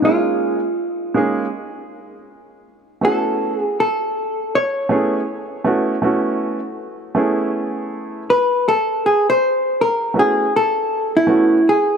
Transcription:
0, 0, Header, 1, 3, 480
1, 0, Start_track
1, 0, Tempo, 750000
1, 21, Time_signature, 4, 2, 24, 8
1, 7663, End_track
2, 0, Start_track
2, 0, Title_t, "Hollow-body jazz guitar"
2, 0, Program_c, 0, 26
2, 32, Note_on_c, 0, 65, 72
2, 961, Note_off_c, 0, 65, 0
2, 1950, Note_on_c, 0, 69, 90
2, 2289, Note_off_c, 0, 69, 0
2, 2289, Note_on_c, 0, 68, 90
2, 2425, Note_off_c, 0, 68, 0
2, 2433, Note_on_c, 0, 69, 94
2, 2912, Note_off_c, 0, 69, 0
2, 2914, Note_on_c, 0, 73, 99
2, 5282, Note_off_c, 0, 73, 0
2, 5313, Note_on_c, 0, 71, 101
2, 5554, Note_off_c, 0, 71, 0
2, 5558, Note_on_c, 0, 69, 103
2, 5796, Note_off_c, 0, 69, 0
2, 5799, Note_on_c, 0, 68, 81
2, 5929, Note_off_c, 0, 68, 0
2, 5950, Note_on_c, 0, 72, 102
2, 6278, Note_off_c, 0, 72, 0
2, 6281, Note_on_c, 0, 70, 100
2, 6518, Note_off_c, 0, 70, 0
2, 6523, Note_on_c, 0, 68, 89
2, 6736, Note_off_c, 0, 68, 0
2, 6761, Note_on_c, 0, 69, 104
2, 7114, Note_off_c, 0, 69, 0
2, 7146, Note_on_c, 0, 64, 83
2, 7479, Note_off_c, 0, 64, 0
2, 7482, Note_on_c, 0, 68, 86
2, 7663, Note_off_c, 0, 68, 0
2, 7663, End_track
3, 0, Start_track
3, 0, Title_t, "Grand piano"
3, 0, Program_c, 1, 0
3, 14, Note_on_c, 1, 56, 63
3, 20, Note_on_c, 1, 58, 57
3, 22, Note_on_c, 1, 61, 56
3, 28, Note_on_c, 1, 63, 59
3, 32, Note_on_c, 1, 68, 65
3, 376, Note_off_c, 1, 56, 0
3, 380, Note_off_c, 1, 58, 0
3, 380, Note_off_c, 1, 61, 0
3, 383, Note_off_c, 1, 63, 0
3, 385, Note_off_c, 1, 68, 0
3, 732, Note_on_c, 1, 56, 73
3, 737, Note_on_c, 1, 58, 67
3, 741, Note_on_c, 1, 61, 65
3, 746, Note_on_c, 1, 63, 63
3, 750, Note_on_c, 1, 68, 85
3, 922, Note_off_c, 1, 56, 0
3, 924, Note_off_c, 1, 58, 0
3, 926, Note_off_c, 1, 61, 0
3, 928, Note_off_c, 1, 63, 0
3, 930, Note_off_c, 1, 68, 0
3, 1928, Note_on_c, 1, 57, 61
3, 1932, Note_on_c, 1, 59, 59
3, 1937, Note_on_c, 1, 61, 59
3, 1942, Note_on_c, 1, 64, 60
3, 1947, Note_on_c, 1, 66, 74
3, 2293, Note_off_c, 1, 57, 0
3, 2296, Note_off_c, 1, 59, 0
3, 2298, Note_off_c, 1, 61, 0
3, 2300, Note_off_c, 1, 64, 0
3, 2303, Note_off_c, 1, 66, 0
3, 3131, Note_on_c, 1, 57, 74
3, 3136, Note_on_c, 1, 59, 69
3, 3139, Note_on_c, 1, 61, 67
3, 3143, Note_on_c, 1, 64, 64
3, 3147, Note_on_c, 1, 68, 78
3, 3321, Note_off_c, 1, 57, 0
3, 3324, Note_off_c, 1, 59, 0
3, 3325, Note_off_c, 1, 61, 0
3, 3327, Note_off_c, 1, 64, 0
3, 3329, Note_off_c, 1, 68, 0
3, 3612, Note_on_c, 1, 57, 74
3, 3615, Note_on_c, 1, 59, 67
3, 3620, Note_on_c, 1, 61, 65
3, 3623, Note_on_c, 1, 64, 64
3, 3627, Note_on_c, 1, 66, 82
3, 3802, Note_off_c, 1, 57, 0
3, 3803, Note_off_c, 1, 59, 0
3, 3806, Note_off_c, 1, 61, 0
3, 3807, Note_off_c, 1, 64, 0
3, 3809, Note_off_c, 1, 66, 0
3, 3852, Note_on_c, 1, 57, 69
3, 3857, Note_on_c, 1, 59, 59
3, 3861, Note_on_c, 1, 61, 68
3, 3865, Note_on_c, 1, 64, 67
3, 3868, Note_on_c, 1, 66, 79
3, 4215, Note_off_c, 1, 57, 0
3, 4218, Note_off_c, 1, 59, 0
3, 4220, Note_off_c, 1, 61, 0
3, 4222, Note_off_c, 1, 64, 0
3, 4223, Note_off_c, 1, 66, 0
3, 4574, Note_on_c, 1, 57, 75
3, 4577, Note_on_c, 1, 59, 66
3, 4581, Note_on_c, 1, 61, 64
3, 4587, Note_on_c, 1, 64, 73
3, 4592, Note_on_c, 1, 68, 72
3, 5261, Note_off_c, 1, 57, 0
3, 5263, Note_off_c, 1, 59, 0
3, 5265, Note_off_c, 1, 61, 0
3, 5268, Note_off_c, 1, 64, 0
3, 5270, Note_off_c, 1, 68, 0
3, 6490, Note_on_c, 1, 57, 56
3, 6493, Note_on_c, 1, 59, 56
3, 6500, Note_on_c, 1, 61, 55
3, 6503, Note_on_c, 1, 64, 61
3, 6509, Note_on_c, 1, 66, 68
3, 6680, Note_off_c, 1, 57, 0
3, 6682, Note_off_c, 1, 59, 0
3, 6686, Note_off_c, 1, 61, 0
3, 6687, Note_off_c, 1, 64, 0
3, 6690, Note_off_c, 1, 66, 0
3, 7211, Note_on_c, 1, 57, 72
3, 7215, Note_on_c, 1, 59, 61
3, 7219, Note_on_c, 1, 61, 62
3, 7223, Note_on_c, 1, 64, 62
3, 7226, Note_on_c, 1, 66, 70
3, 7401, Note_off_c, 1, 57, 0
3, 7403, Note_off_c, 1, 59, 0
3, 7405, Note_off_c, 1, 61, 0
3, 7407, Note_off_c, 1, 64, 0
3, 7409, Note_off_c, 1, 66, 0
3, 7663, End_track
0, 0, End_of_file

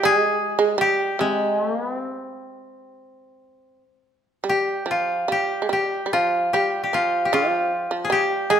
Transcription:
0, 0, Header, 1, 3, 480
1, 0, Start_track
1, 0, Tempo, 758534
1, 754, Time_signature, 4, 2, 24, 8
1, 754, Tempo, 792602
1, 1714, Tempo, 829876
1, 3634, Tempo, 794702
1, 5145, End_track
2, 0, Start_track
2, 0, Title_t, "Koto"
2, 0, Program_c, 0, 107
2, 0, Note_on_c, 0, 65, 77
2, 0, Note_on_c, 0, 67, 91
2, 32, Note_on_c, 0, 68, 86
2, 70, Note_off_c, 0, 67, 0
2, 513, Note_on_c, 0, 67, 75
2, 551, Note_off_c, 0, 68, 0
2, 596, Note_off_c, 0, 65, 0
2, 763, Note_on_c, 0, 56, 70
2, 981, Note_off_c, 0, 56, 0
2, 981, Note_on_c, 0, 57, 70
2, 1059, Note_off_c, 0, 57, 0
2, 1059, Note_on_c, 0, 58, 70
2, 1144, Note_off_c, 0, 58, 0
2, 1144, Note_on_c, 0, 59, 70
2, 1229, Note_off_c, 0, 59, 0
2, 1229, Note_on_c, 0, 60, 70
2, 1756, Note_off_c, 0, 67, 0
2, 2309, Note_off_c, 0, 60, 0
2, 2707, Note_on_c, 0, 67, 66
2, 2947, Note_on_c, 0, 65, 56
2, 3183, Note_off_c, 0, 67, 0
2, 3185, Note_on_c, 0, 67, 58
2, 3418, Note_off_c, 0, 67, 0
2, 3421, Note_on_c, 0, 67, 56
2, 3652, Note_off_c, 0, 65, 0
2, 3655, Note_on_c, 0, 65, 67
2, 3895, Note_off_c, 0, 67, 0
2, 3898, Note_on_c, 0, 67, 62
2, 4078, Note_off_c, 0, 67, 0
2, 4081, Note_on_c, 0, 67, 48
2, 4142, Note_off_c, 0, 65, 0
2, 4144, Note_on_c, 0, 65, 64
2, 4331, Note_off_c, 0, 67, 0
2, 4333, Note_on_c, 0, 67, 47
2, 4380, Note_off_c, 0, 65, 0
2, 4382, Note_on_c, 0, 65, 65
2, 4811, Note_on_c, 0, 68, 48
2, 4848, Note_off_c, 0, 67, 0
2, 4858, Note_on_c, 0, 67, 72
2, 4894, Note_off_c, 0, 68, 0
2, 5086, Note_on_c, 0, 68, 72
2, 5123, Note_off_c, 0, 67, 0
2, 5145, Note_off_c, 0, 65, 0
2, 5145, Note_off_c, 0, 68, 0
2, 5145, End_track
3, 0, Start_track
3, 0, Title_t, "Shamisen"
3, 0, Program_c, 1, 106
3, 22, Note_on_c, 1, 55, 82
3, 104, Note_off_c, 1, 55, 0
3, 104, Note_on_c, 1, 56, 82
3, 359, Note_off_c, 1, 56, 0
3, 371, Note_on_c, 1, 56, 75
3, 491, Note_off_c, 1, 56, 0
3, 493, Note_on_c, 1, 55, 68
3, 727, Note_off_c, 1, 55, 0
3, 754, Note_on_c, 1, 48, 57
3, 2173, Note_off_c, 1, 48, 0
3, 2674, Note_on_c, 1, 55, 54
3, 2896, Note_off_c, 1, 55, 0
3, 2918, Note_on_c, 1, 53, 50
3, 3139, Note_off_c, 1, 53, 0
3, 3163, Note_on_c, 1, 55, 56
3, 3344, Note_off_c, 1, 55, 0
3, 3358, Note_on_c, 1, 56, 42
3, 3397, Note_off_c, 1, 56, 0
3, 3400, Note_on_c, 1, 55, 54
3, 3581, Note_off_c, 1, 55, 0
3, 3613, Note_on_c, 1, 55, 44
3, 3645, Note_off_c, 1, 55, 0
3, 3656, Note_on_c, 1, 53, 53
3, 3875, Note_off_c, 1, 53, 0
3, 3902, Note_on_c, 1, 55, 61
3, 4117, Note_off_c, 1, 55, 0
3, 4139, Note_on_c, 1, 53, 51
3, 4353, Note_off_c, 1, 53, 0
3, 4378, Note_on_c, 1, 53, 60
3, 4702, Note_off_c, 1, 53, 0
3, 4729, Note_on_c, 1, 53, 55
3, 4834, Note_off_c, 1, 53, 0
3, 4843, Note_on_c, 1, 55, 65
3, 5062, Note_off_c, 1, 55, 0
3, 5086, Note_on_c, 1, 56, 66
3, 5145, Note_off_c, 1, 56, 0
3, 5145, End_track
0, 0, End_of_file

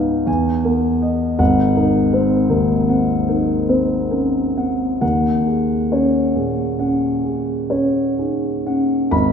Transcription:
0, 0, Header, 1, 2, 480
1, 0, Start_track
1, 0, Key_signature, -6, "minor"
1, 0, Tempo, 746269
1, 897, Time_signature, 9, 3, 24, 8
1, 1614, Tempo, 807537
1, 2574, Tempo, 894188
1, 4494, Tempo, 943396
1, 5321, End_track
2, 0, Start_track
2, 0, Title_t, "Grand piano"
2, 0, Program_c, 0, 0
2, 0, Control_c, 0, 64, 127
2, 0, Note_on_c, 0, 37, 54
2, 0, Note_on_c, 0, 44, 42
2, 0, Note_on_c, 0, 59, 39
2, 0, Note_on_c, 0, 63, 41
2, 0, Note_on_c, 0, 71, 43
2, 0, Note_on_c, 0, 75, 44
2, 0, Note_on_c, 0, 77, 43
2, 77, Note_off_c, 0, 77, 0
2, 79, Note_off_c, 0, 59, 0
2, 153, Note_off_c, 0, 37, 0
2, 167, Note_on_c, 0, 40, 52
2, 174, Note_off_c, 0, 63, 0
2, 174, Note_off_c, 0, 71, 0
2, 174, Note_on_c, 0, 80, 61
2, 188, Control_c, 0, 64, 0
2, 192, Note_off_c, 0, 44, 0
2, 194, Note_off_c, 0, 75, 0
2, 300, Control_c, 0, 64, 127
2, 416, Note_on_c, 0, 70, 42
2, 418, Note_on_c, 0, 59, 40
2, 560, Note_off_c, 0, 80, 0
2, 656, Note_on_c, 0, 75, 45
2, 801, Note_off_c, 0, 70, 0
2, 802, Note_off_c, 0, 59, 0
2, 872, Note_off_c, 0, 40, 0
2, 892, Note_on_c, 0, 32, 59
2, 894, Note_on_c, 0, 78, 68
2, 897, Note_off_c, 0, 75, 0
2, 908, Control_c, 0, 64, 0
2, 1010, Control_c, 0, 64, 127
2, 1130, Note_on_c, 0, 63, 39
2, 1135, Note_on_c, 0, 70, 41
2, 1276, Note_off_c, 0, 78, 0
2, 1368, Note_on_c, 0, 60, 43
2, 1372, Note_on_c, 0, 72, 43
2, 1513, Note_off_c, 0, 63, 0
2, 1516, Note_off_c, 0, 70, 0
2, 1604, Note_on_c, 0, 39, 43
2, 1606, Note_on_c, 0, 70, 44
2, 1748, Note_off_c, 0, 60, 0
2, 1750, Note_off_c, 0, 72, 0
2, 1841, Note_on_c, 0, 60, 38
2, 1843, Note_on_c, 0, 78, 42
2, 1980, Note_off_c, 0, 39, 0
2, 1981, Note_off_c, 0, 70, 0
2, 2076, Note_on_c, 0, 70, 40
2, 2077, Note_on_c, 0, 63, 37
2, 2224, Note_off_c, 0, 60, 0
2, 2225, Note_off_c, 0, 78, 0
2, 2313, Note_on_c, 0, 60, 37
2, 2318, Note_on_c, 0, 72, 41
2, 2471, Note_off_c, 0, 63, 0
2, 2471, Note_off_c, 0, 70, 0
2, 2562, Note_on_c, 0, 61, 30
2, 2566, Note_on_c, 0, 70, 35
2, 2710, Note_off_c, 0, 60, 0
2, 2712, Note_off_c, 0, 72, 0
2, 2805, Note_off_c, 0, 61, 0
2, 2813, Note_on_c, 0, 60, 36
2, 2815, Note_on_c, 0, 78, 37
2, 2952, Note_off_c, 0, 70, 0
2, 3030, Note_off_c, 0, 32, 0
2, 3043, Note_off_c, 0, 78, 0
2, 3049, Note_on_c, 0, 39, 47
2, 3051, Note_on_c, 0, 78, 55
2, 3055, Note_off_c, 0, 60, 0
2, 3065, Control_c, 0, 64, 0
2, 3173, Control_c, 0, 64, 127
2, 3297, Note_on_c, 0, 68, 33
2, 3441, Note_off_c, 0, 78, 0
2, 3537, Note_on_c, 0, 61, 33
2, 3538, Note_on_c, 0, 73, 35
2, 3679, Note_off_c, 0, 68, 0
2, 3771, Note_on_c, 0, 46, 33
2, 3771, Note_on_c, 0, 68, 35
2, 3918, Note_off_c, 0, 61, 0
2, 3918, Note_off_c, 0, 73, 0
2, 4006, Note_on_c, 0, 61, 32
2, 4006, Note_on_c, 0, 78, 35
2, 4154, Note_off_c, 0, 46, 0
2, 4154, Note_off_c, 0, 68, 0
2, 4247, Note_on_c, 0, 68, 32
2, 4393, Note_off_c, 0, 61, 0
2, 4393, Note_off_c, 0, 78, 0
2, 4493, Note_on_c, 0, 73, 34
2, 4499, Note_on_c, 0, 61, 33
2, 4635, Note_off_c, 0, 68, 0
2, 4741, Note_on_c, 0, 63, 28
2, 4742, Note_on_c, 0, 68, 31
2, 4879, Note_off_c, 0, 73, 0
2, 4882, Note_off_c, 0, 61, 0
2, 4979, Note_off_c, 0, 63, 0
2, 4984, Note_on_c, 0, 61, 32
2, 4984, Note_on_c, 0, 78, 35
2, 5124, Note_off_c, 0, 68, 0
2, 5193, Note_off_c, 0, 39, 0
2, 5213, Note_on_c, 0, 32, 50
2, 5213, Note_on_c, 0, 83, 55
2, 5220, Note_off_c, 0, 61, 0
2, 5220, Note_off_c, 0, 78, 0
2, 5227, Control_c, 0, 64, 0
2, 5321, Note_off_c, 0, 32, 0
2, 5321, Note_off_c, 0, 83, 0
2, 5321, End_track
0, 0, End_of_file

